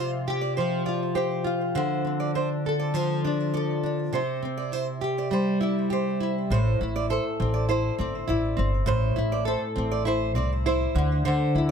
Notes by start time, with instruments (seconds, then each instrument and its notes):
Already playing: nylon-string guitar C3 F3 C4 F4, steel-string acoustic guitar C5
0.28 nylon-string guitar G4
0.41 steel-string acoustic guitar D5
0.57 nylon-string guitar F3, steel-string acoustic guitar C5
0.86 nylon-string guitar F4, steel-string acoustic guitar D5
1.15 nylon-string guitar G4, steel-string acoustic guitar C5
1.44 nylon-string guitar F4
1.75 nylon-string guitar D3, steel-string acoustic guitar C5
2.05 nylon-string guitar C4
2.20 steel-string acoustic guitar D5
2.35 nylon-string guitar D4, steel-string acoustic guitar C5
2.66 nylon-string guitar A4
2.79 steel-string acoustic guitar D5
2.94 nylon-string guitar F3, steel-string acoustic guitar C5
3.25 nylon-string guitar D4, steel-string acoustic guitar D5
3.54 nylon-string guitar A4, steel-string acoustic guitar D5
3.84 nylon-string guitar D4
4.13 nylon-string guitar C3, steel-string acoustic guitar C5
4.43 nylon-string guitar C4
4.58 steel-string acoustic guitar D5
4.72 nylon-string guitar E4, steel-string acoustic guitar C5
5.01 nylon-string guitar G4
5.18 steel-string acoustic guitar D5
5.31 nylon-string guitar G3, steel-string acoustic guitar C5
5.61 nylon-string guitar E4, steel-string acoustic guitar D5
5.90 nylon-string guitar G4, steel-string acoustic guitar C5
6.20 nylon-string guitar E4
6.50 upright bass A1, nylon-string guitar A2, steel-string acoustic guitar C5
6.81 upright bass A1, nylon-string guitar E4
6.96 steel-string acoustic guitar D5
7.10 nylon-string guitar A4, steel-string acoustic guitar C5
7.40 upright bass A1, nylon-string guitar C4
7.54 steel-string acoustic guitar D5
7.69 nylon-string guitar E4, steel-string acoustic guitar C5
7.99 upright bass G1, nylon-string guitar C4, steel-string acoustic guitar D5
8.28 upright bass A1, nylon-string guitar E4, steel-string acoustic guitar D5
8.57 upright bass G1, nylon-string guitar C4
8.86 upright bass A1, nylon-string guitar A2, steel-string acoustic guitar C5
9.16 upright bass A1, nylon-string guitar E4
9.32 steel-string acoustic guitar D5
9.45 nylon-string guitar A4, steel-string acoustic guitar C5
9.76 upright bass A1, nylon-string guitar C4
9.91 steel-string acoustic guitar D5
10.05 nylon-string guitar E4, steel-string acoustic guitar C5
10.35 upright bass C2, nylon-string guitar C4, steel-string acoustic guitar D5
10.66 nylon-string guitar E4, steel-string acoustic guitar C5
10.95 upright bass D2, nylon-string guitar D3
11.25 nylon-string guitar D3, steel-string acoustic guitar C5
11.55 upright bass D2, nylon-string guitar E4